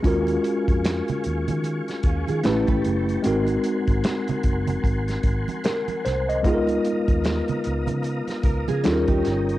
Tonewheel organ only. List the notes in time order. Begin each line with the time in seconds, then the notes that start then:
Already playing: C#6
0.03 G#4 F5 G#5
2.43 B4 G5 A5
3.25 A#4 F#5 G#5 C6
6.44 B3 F5 A#5 D#6
8.84 C#5 G5